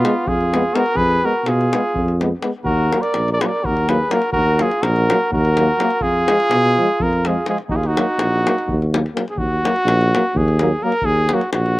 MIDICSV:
0, 0, Header, 1, 7, 480
1, 0, Start_track
1, 0, Key_signature, -6, "minor"
1, 0, Tempo, 480000
1, 961, Time_signature, 7, 3, 24, 8
1, 11799, End_track
2, 0, Start_track
2, 0, Title_t, "Cornet"
2, 0, Program_c, 0, 56
2, 0, Note_on_c, 0, 65, 98
2, 278, Note_on_c, 0, 68, 83
2, 293, Note_off_c, 0, 65, 0
2, 754, Note_on_c, 0, 70, 102
2, 769, Note_off_c, 0, 68, 0
2, 967, Note_on_c, 0, 71, 126
2, 982, Note_off_c, 0, 70, 0
2, 1250, Note_on_c, 0, 70, 95
2, 1265, Note_off_c, 0, 71, 0
2, 1485, Note_on_c, 0, 68, 95
2, 1500, Note_off_c, 0, 70, 0
2, 2218, Note_off_c, 0, 68, 0
2, 2648, Note_on_c, 0, 70, 91
2, 3016, Note_on_c, 0, 74, 80
2, 3031, Note_off_c, 0, 70, 0
2, 3321, Note_off_c, 0, 74, 0
2, 3327, Note_on_c, 0, 74, 92
2, 3418, Note_on_c, 0, 71, 70
2, 3434, Note_off_c, 0, 74, 0
2, 3464, Note_on_c, 0, 74, 80
2, 3479, Note_off_c, 0, 71, 0
2, 3653, Note_on_c, 0, 70, 92
2, 3668, Note_off_c, 0, 74, 0
2, 3897, Note_on_c, 0, 71, 86
2, 3912, Note_off_c, 0, 70, 0
2, 4115, Note_on_c, 0, 70, 87
2, 4130, Note_off_c, 0, 71, 0
2, 4318, Note_off_c, 0, 70, 0
2, 4324, Note_on_c, 0, 70, 101
2, 4619, Note_on_c, 0, 68, 85
2, 4634, Note_off_c, 0, 70, 0
2, 4831, Note_on_c, 0, 70, 97
2, 4846, Note_off_c, 0, 68, 0
2, 5323, Note_off_c, 0, 70, 0
2, 5331, Note_on_c, 0, 70, 94
2, 6022, Note_on_c, 0, 68, 116
2, 6037, Note_off_c, 0, 70, 0
2, 7024, Note_on_c, 0, 70, 90
2, 7038, Note_off_c, 0, 68, 0
2, 7272, Note_on_c, 0, 68, 76
2, 7287, Note_off_c, 0, 70, 0
2, 7480, Note_off_c, 0, 68, 0
2, 7485, Note_on_c, 0, 68, 79
2, 7580, Note_off_c, 0, 68, 0
2, 7708, Note_on_c, 0, 66, 81
2, 7757, Note_on_c, 0, 68, 72
2, 7772, Note_off_c, 0, 66, 0
2, 7874, Note_on_c, 0, 66, 100
2, 7888, Note_off_c, 0, 68, 0
2, 8940, Note_off_c, 0, 66, 0
2, 9300, Note_on_c, 0, 68, 65
2, 9383, Note_on_c, 0, 66, 102
2, 9398, Note_off_c, 0, 68, 0
2, 10373, Note_on_c, 0, 68, 85
2, 10388, Note_off_c, 0, 66, 0
2, 10830, Note_on_c, 0, 70, 102
2, 10845, Note_off_c, 0, 68, 0
2, 11052, Note_on_c, 0, 68, 115
2, 11067, Note_off_c, 0, 70, 0
2, 11340, Note_on_c, 0, 66, 87
2, 11355, Note_off_c, 0, 68, 0
2, 11521, Note_off_c, 0, 66, 0
2, 11527, Note_on_c, 0, 66, 89
2, 11799, Note_off_c, 0, 66, 0
2, 11799, End_track
3, 0, Start_track
3, 0, Title_t, "Flugelhorn"
3, 0, Program_c, 1, 56
3, 0, Note_on_c, 1, 59, 91
3, 265, Note_on_c, 1, 65, 74
3, 280, Note_off_c, 1, 59, 0
3, 732, Note_on_c, 1, 66, 80
3, 747, Note_off_c, 1, 65, 0
3, 952, Note_on_c, 1, 68, 84
3, 967, Note_off_c, 1, 66, 0
3, 1244, Note_on_c, 1, 66, 73
3, 1258, Note_off_c, 1, 68, 0
3, 1465, Note_on_c, 1, 65, 80
3, 1480, Note_off_c, 1, 66, 0
3, 2208, Note_off_c, 1, 65, 0
3, 2651, Note_on_c, 1, 66, 90
3, 2987, Note_on_c, 1, 70, 72
3, 3002, Note_off_c, 1, 66, 0
3, 3302, Note_off_c, 1, 70, 0
3, 3308, Note_on_c, 1, 70, 71
3, 3389, Note_on_c, 1, 68, 67
3, 3404, Note_off_c, 1, 70, 0
3, 3459, Note_on_c, 1, 70, 64
3, 3474, Note_off_c, 1, 68, 0
3, 3629, Note_on_c, 1, 66, 76
3, 3644, Note_off_c, 1, 70, 0
3, 3889, Note_on_c, 1, 68, 65
3, 3904, Note_off_c, 1, 66, 0
3, 4122, Note_on_c, 1, 66, 68
3, 4137, Note_off_c, 1, 68, 0
3, 4320, Note_off_c, 1, 66, 0
3, 4326, Note_on_c, 1, 66, 92
3, 4604, Note_on_c, 1, 65, 69
3, 4619, Note_off_c, 1, 66, 0
3, 4809, Note_on_c, 1, 66, 82
3, 4824, Note_off_c, 1, 65, 0
3, 5312, Note_off_c, 1, 66, 0
3, 5328, Note_on_c, 1, 66, 79
3, 6012, Note_on_c, 1, 65, 82
3, 6027, Note_off_c, 1, 66, 0
3, 7019, Note_off_c, 1, 65, 0
3, 7019, Note_on_c, 1, 65, 65
3, 7252, Note_off_c, 1, 65, 0
3, 7252, Note_on_c, 1, 65, 65
3, 7470, Note_off_c, 1, 65, 0
3, 7485, Note_on_c, 1, 65, 68
3, 7580, Note_off_c, 1, 65, 0
3, 7695, Note_on_c, 1, 63, 78
3, 7758, Note_on_c, 1, 65, 61
3, 7773, Note_off_c, 1, 63, 0
3, 7854, Note_on_c, 1, 63, 71
3, 7869, Note_off_c, 1, 65, 0
3, 8930, Note_off_c, 1, 63, 0
3, 11799, End_track
4, 0, Start_track
4, 0, Title_t, "Trombone"
4, 0, Program_c, 2, 57
4, 67, Note_on_c, 2, 59, 60
4, 153, Note_off_c, 2, 59, 0
4, 544, Note_on_c, 2, 59, 64
4, 628, Note_off_c, 2, 59, 0
4, 744, Note_on_c, 2, 59, 66
4, 831, Note_off_c, 2, 59, 0
4, 1239, Note_on_c, 2, 59, 55
4, 1328, Note_off_c, 2, 59, 0
4, 1729, Note_on_c, 2, 59, 58
4, 1820, Note_off_c, 2, 59, 0
4, 2211, Note_on_c, 2, 59, 47
4, 2297, Note_off_c, 2, 59, 0
4, 2416, Note_on_c, 2, 59, 51
4, 2505, Note_off_c, 2, 59, 0
4, 2913, Note_on_c, 2, 58, 52
4, 3004, Note_off_c, 2, 58, 0
4, 3409, Note_on_c, 2, 58, 47
4, 3500, Note_off_c, 2, 58, 0
4, 3895, Note_on_c, 2, 58, 54
4, 3981, Note_off_c, 2, 58, 0
4, 4127, Note_on_c, 2, 58, 61
4, 4211, Note_off_c, 2, 58, 0
4, 4597, Note_on_c, 2, 58, 58
4, 4688, Note_off_c, 2, 58, 0
4, 5098, Note_on_c, 2, 58, 58
4, 5187, Note_off_c, 2, 58, 0
4, 5592, Note_on_c, 2, 58, 64
4, 5675, Note_off_c, 2, 58, 0
4, 5821, Note_on_c, 2, 58, 63
4, 5902, Note_off_c, 2, 58, 0
4, 6292, Note_on_c, 2, 56, 56
4, 6380, Note_off_c, 2, 56, 0
4, 6801, Note_on_c, 2, 56, 57
4, 6886, Note_off_c, 2, 56, 0
4, 7271, Note_on_c, 2, 56, 55
4, 7355, Note_off_c, 2, 56, 0
4, 7486, Note_on_c, 2, 56, 59
4, 7571, Note_off_c, 2, 56, 0
4, 7972, Note_on_c, 2, 58, 58
4, 8060, Note_off_c, 2, 58, 0
4, 8463, Note_on_c, 2, 58, 53
4, 8552, Note_off_c, 2, 58, 0
4, 8926, Note_on_c, 2, 58, 49
4, 9014, Note_off_c, 2, 58, 0
4, 9150, Note_on_c, 2, 58, 48
4, 9237, Note_off_c, 2, 58, 0
4, 9650, Note_on_c, 2, 58, 53
4, 9737, Note_off_c, 2, 58, 0
4, 10153, Note_on_c, 2, 58, 60
4, 10238, Note_off_c, 2, 58, 0
4, 10608, Note_on_c, 2, 58, 62
4, 10694, Note_off_c, 2, 58, 0
4, 10836, Note_on_c, 2, 58, 67
4, 10921, Note_off_c, 2, 58, 0
4, 11326, Note_on_c, 2, 58, 65
4, 11412, Note_off_c, 2, 58, 0
4, 11799, End_track
5, 0, Start_track
5, 0, Title_t, "Euphonium"
5, 0, Program_c, 3, 58
5, 42, Note_on_c, 3, 56, 71
5, 133, Note_off_c, 3, 56, 0
5, 539, Note_on_c, 3, 56, 59
5, 623, Note_off_c, 3, 56, 0
5, 742, Note_on_c, 3, 56, 55
5, 829, Note_off_c, 3, 56, 0
5, 1235, Note_on_c, 3, 56, 55
5, 1325, Note_off_c, 3, 56, 0
5, 1729, Note_on_c, 3, 56, 56
5, 1820, Note_off_c, 3, 56, 0
5, 2213, Note_on_c, 3, 56, 56
5, 2299, Note_off_c, 3, 56, 0
5, 2429, Note_on_c, 3, 56, 45
5, 2516, Note_off_c, 3, 56, 0
5, 2919, Note_on_c, 3, 54, 44
5, 3009, Note_off_c, 3, 54, 0
5, 3416, Note_on_c, 3, 54, 54
5, 3505, Note_off_c, 3, 54, 0
5, 3882, Note_on_c, 3, 54, 54
5, 3971, Note_off_c, 3, 54, 0
5, 4098, Note_on_c, 3, 54, 53
5, 4187, Note_off_c, 3, 54, 0
5, 4600, Note_on_c, 3, 54, 53
5, 4690, Note_off_c, 3, 54, 0
5, 5091, Note_on_c, 3, 54, 66
5, 5182, Note_off_c, 3, 54, 0
5, 5568, Note_on_c, 3, 54, 58
5, 5656, Note_off_c, 3, 54, 0
5, 5778, Note_on_c, 3, 54, 53
5, 5868, Note_off_c, 3, 54, 0
5, 6265, Note_on_c, 3, 53, 52
5, 6358, Note_off_c, 3, 53, 0
5, 6775, Note_on_c, 3, 53, 64
5, 6865, Note_off_c, 3, 53, 0
5, 7253, Note_on_c, 3, 53, 53
5, 7340, Note_off_c, 3, 53, 0
5, 7471, Note_on_c, 3, 53, 53
5, 7558, Note_off_c, 3, 53, 0
5, 7960, Note_on_c, 3, 54, 57
5, 8050, Note_off_c, 3, 54, 0
5, 8462, Note_on_c, 3, 54, 45
5, 8550, Note_off_c, 3, 54, 0
5, 8923, Note_on_c, 3, 54, 42
5, 9012, Note_off_c, 3, 54, 0
5, 9148, Note_on_c, 3, 54, 41
5, 9236, Note_off_c, 3, 54, 0
5, 9641, Note_on_c, 3, 54, 46
5, 9730, Note_off_c, 3, 54, 0
5, 10126, Note_on_c, 3, 54, 56
5, 10217, Note_off_c, 3, 54, 0
5, 10613, Note_on_c, 3, 54, 63
5, 10699, Note_off_c, 3, 54, 0
5, 10831, Note_on_c, 3, 54, 50
5, 10916, Note_off_c, 3, 54, 0
5, 11318, Note_on_c, 3, 54, 57
5, 11406, Note_off_c, 3, 54, 0
5, 11799, End_track
6, 0, Start_track
6, 0, Title_t, "Tuba"
6, 0, Program_c, 4, 58
6, 263, Note_on_c, 4, 41, 78
6, 644, Note_off_c, 4, 41, 0
6, 947, Note_on_c, 4, 41, 89
6, 1224, Note_off_c, 4, 41, 0
6, 1444, Note_on_c, 4, 47, 86
6, 1720, Note_off_c, 4, 47, 0
6, 1947, Note_on_c, 4, 41, 87
6, 2328, Note_off_c, 4, 41, 0
6, 2635, Note_on_c, 4, 39, 86
6, 2911, Note_off_c, 4, 39, 0
6, 3140, Note_on_c, 4, 34, 79
6, 3413, Note_off_c, 4, 34, 0
6, 3635, Note_on_c, 4, 39, 81
6, 4015, Note_off_c, 4, 39, 0
6, 4326, Note_on_c, 4, 39, 89
6, 4599, Note_off_c, 4, 39, 0
6, 4817, Note_on_c, 4, 34, 101
6, 5092, Note_off_c, 4, 34, 0
6, 5317, Note_on_c, 4, 39, 94
6, 5697, Note_off_c, 4, 39, 0
6, 6011, Note_on_c, 4, 41, 65
6, 6283, Note_off_c, 4, 41, 0
6, 6506, Note_on_c, 4, 47, 88
6, 6778, Note_off_c, 4, 47, 0
6, 7000, Note_on_c, 4, 41, 82
6, 7379, Note_off_c, 4, 41, 0
6, 7690, Note_on_c, 4, 39, 78
6, 7962, Note_off_c, 4, 39, 0
6, 8181, Note_on_c, 4, 34, 82
6, 8454, Note_off_c, 4, 34, 0
6, 8677, Note_on_c, 4, 39, 86
6, 9056, Note_off_c, 4, 39, 0
6, 9364, Note_on_c, 4, 39, 71
6, 9636, Note_off_c, 4, 39, 0
6, 9846, Note_on_c, 4, 34, 105
6, 10122, Note_off_c, 4, 34, 0
6, 10345, Note_on_c, 4, 39, 96
6, 10725, Note_off_c, 4, 39, 0
6, 11029, Note_on_c, 4, 39, 81
6, 11303, Note_off_c, 4, 39, 0
6, 11520, Note_on_c, 4, 34, 88
6, 11795, Note_off_c, 4, 34, 0
6, 11799, End_track
7, 0, Start_track
7, 0, Title_t, "Davul"
7, 49, Note_on_c, 9, 37, 68
7, 149, Note_off_c, 9, 37, 0
7, 275, Note_on_c, 9, 43, 99
7, 375, Note_off_c, 9, 43, 0
7, 407, Note_on_c, 9, 37, 20
7, 507, Note_off_c, 9, 37, 0
7, 536, Note_on_c, 9, 37, 65
7, 636, Note_off_c, 9, 37, 0
7, 755, Note_on_c, 9, 37, 62
7, 855, Note_off_c, 9, 37, 0
7, 859, Note_on_c, 9, 37, 22
7, 959, Note_off_c, 9, 37, 0
7, 967, Note_on_c, 9, 43, 77
7, 1067, Note_off_c, 9, 43, 0
7, 1111, Note_on_c, 9, 37, 19
7, 1211, Note_off_c, 9, 37, 0
7, 1464, Note_on_c, 9, 37, 59
7, 1564, Note_off_c, 9, 37, 0
7, 1608, Note_on_c, 9, 37, 27
7, 1708, Note_off_c, 9, 37, 0
7, 1729, Note_on_c, 9, 37, 77
7, 1829, Note_off_c, 9, 37, 0
7, 1957, Note_on_c, 9, 43, 76
7, 2057, Note_off_c, 9, 43, 0
7, 2083, Note_on_c, 9, 37, 20
7, 2183, Note_off_c, 9, 37, 0
7, 2210, Note_on_c, 9, 37, 56
7, 2310, Note_off_c, 9, 37, 0
7, 2425, Note_on_c, 9, 37, 55
7, 2525, Note_off_c, 9, 37, 0
7, 2655, Note_on_c, 9, 43, 72
7, 2755, Note_off_c, 9, 43, 0
7, 2925, Note_on_c, 9, 37, 59
7, 3025, Note_off_c, 9, 37, 0
7, 3031, Note_on_c, 9, 37, 29
7, 3131, Note_off_c, 9, 37, 0
7, 3140, Note_on_c, 9, 37, 59
7, 3240, Note_off_c, 9, 37, 0
7, 3282, Note_on_c, 9, 37, 25
7, 3382, Note_off_c, 9, 37, 0
7, 3412, Note_on_c, 9, 37, 76
7, 3512, Note_off_c, 9, 37, 0
7, 3647, Note_on_c, 9, 43, 72
7, 3747, Note_off_c, 9, 43, 0
7, 3767, Note_on_c, 9, 37, 24
7, 3867, Note_off_c, 9, 37, 0
7, 3887, Note_on_c, 9, 37, 65
7, 3987, Note_off_c, 9, 37, 0
7, 4112, Note_on_c, 9, 37, 74
7, 4212, Note_off_c, 9, 37, 0
7, 4218, Note_on_c, 9, 37, 25
7, 4318, Note_off_c, 9, 37, 0
7, 4327, Note_on_c, 9, 43, 70
7, 4427, Note_off_c, 9, 43, 0
7, 4592, Note_on_c, 9, 37, 63
7, 4692, Note_off_c, 9, 37, 0
7, 4715, Note_on_c, 9, 37, 29
7, 4815, Note_off_c, 9, 37, 0
7, 4831, Note_on_c, 9, 37, 73
7, 4931, Note_off_c, 9, 37, 0
7, 4961, Note_on_c, 9, 37, 25
7, 5061, Note_off_c, 9, 37, 0
7, 5098, Note_on_c, 9, 37, 76
7, 5198, Note_off_c, 9, 37, 0
7, 5325, Note_on_c, 9, 43, 82
7, 5425, Note_off_c, 9, 43, 0
7, 5449, Note_on_c, 9, 37, 25
7, 5549, Note_off_c, 9, 37, 0
7, 5569, Note_on_c, 9, 37, 63
7, 5669, Note_off_c, 9, 37, 0
7, 5800, Note_on_c, 9, 37, 66
7, 5900, Note_off_c, 9, 37, 0
7, 5905, Note_on_c, 9, 37, 25
7, 6005, Note_off_c, 9, 37, 0
7, 6008, Note_on_c, 9, 43, 76
7, 6108, Note_off_c, 9, 43, 0
7, 6280, Note_on_c, 9, 37, 75
7, 6380, Note_off_c, 9, 37, 0
7, 6400, Note_on_c, 9, 37, 31
7, 6500, Note_off_c, 9, 37, 0
7, 6509, Note_on_c, 9, 37, 73
7, 6609, Note_off_c, 9, 37, 0
7, 6654, Note_on_c, 9, 37, 25
7, 6754, Note_off_c, 9, 37, 0
7, 7000, Note_on_c, 9, 43, 92
7, 7100, Note_off_c, 9, 43, 0
7, 7128, Note_on_c, 9, 37, 19
7, 7228, Note_off_c, 9, 37, 0
7, 7248, Note_on_c, 9, 37, 62
7, 7348, Note_off_c, 9, 37, 0
7, 7464, Note_on_c, 9, 37, 55
7, 7563, Note_off_c, 9, 37, 0
7, 7582, Note_on_c, 9, 37, 25
7, 7682, Note_off_c, 9, 37, 0
7, 7693, Note_on_c, 9, 43, 85
7, 7793, Note_off_c, 9, 43, 0
7, 7834, Note_on_c, 9, 37, 25
7, 7934, Note_off_c, 9, 37, 0
7, 7972, Note_on_c, 9, 37, 75
7, 8072, Note_off_c, 9, 37, 0
7, 8192, Note_on_c, 9, 37, 74
7, 8292, Note_off_c, 9, 37, 0
7, 8467, Note_on_c, 9, 37, 73
7, 8567, Note_off_c, 9, 37, 0
7, 8585, Note_on_c, 9, 37, 25
7, 8685, Note_off_c, 9, 37, 0
7, 8687, Note_on_c, 9, 43, 80
7, 8787, Note_off_c, 9, 43, 0
7, 8822, Note_on_c, 9, 37, 23
7, 8922, Note_off_c, 9, 37, 0
7, 8942, Note_on_c, 9, 37, 74
7, 9042, Note_off_c, 9, 37, 0
7, 9059, Note_on_c, 9, 37, 26
7, 9159, Note_off_c, 9, 37, 0
7, 9169, Note_on_c, 9, 37, 63
7, 9269, Note_off_c, 9, 37, 0
7, 9278, Note_on_c, 9, 37, 25
7, 9378, Note_off_c, 9, 37, 0
7, 9378, Note_on_c, 9, 43, 80
7, 9478, Note_off_c, 9, 43, 0
7, 9652, Note_on_c, 9, 37, 67
7, 9752, Note_off_c, 9, 37, 0
7, 9761, Note_on_c, 9, 37, 26
7, 9861, Note_off_c, 9, 37, 0
7, 9881, Note_on_c, 9, 37, 70
7, 9981, Note_off_c, 9, 37, 0
7, 10012, Note_on_c, 9, 37, 28
7, 10112, Note_off_c, 9, 37, 0
7, 10146, Note_on_c, 9, 37, 71
7, 10246, Note_off_c, 9, 37, 0
7, 10363, Note_on_c, 9, 43, 92
7, 10463, Note_off_c, 9, 43, 0
7, 10481, Note_on_c, 9, 37, 23
7, 10581, Note_off_c, 9, 37, 0
7, 10593, Note_on_c, 9, 37, 60
7, 10693, Note_off_c, 9, 37, 0
7, 10922, Note_on_c, 9, 37, 27
7, 11017, Note_on_c, 9, 43, 73
7, 11022, Note_off_c, 9, 37, 0
7, 11117, Note_off_c, 9, 43, 0
7, 11288, Note_on_c, 9, 37, 69
7, 11388, Note_off_c, 9, 37, 0
7, 11414, Note_on_c, 9, 37, 27
7, 11514, Note_off_c, 9, 37, 0
7, 11526, Note_on_c, 9, 37, 71
7, 11626, Note_off_c, 9, 37, 0
7, 11659, Note_on_c, 9, 37, 23
7, 11759, Note_off_c, 9, 37, 0
7, 11799, End_track
0, 0, End_of_file